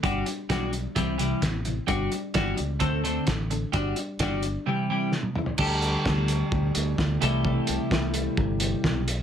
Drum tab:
CC |----------------|----------------|----------------|x---------------|
HH |x-x-x-x-x-x-x-x-|x-x-x-x-x-x-x-x-|x-x-x-x---------|--x---x---x---x-|
SD |----o-------o---|----o-------o---|----o-------o---|----o-------o---|
T1 |----------------|----------------|-------------o--|----------------|
T2 |----------------|----------------|--------------o-|----------------|
FT |----------------|----------------|---------------o|----------------|
BD |o---o---o---o---|o---o---o---o---|o---o-----------|o---o---o---o---|

CC |----------------|
HH |--x---x---x---x-|
SD |----o-------o---|
T1 |----------------|
T2 |----------------|
FT |----------------|
BD |o---o---o---o---|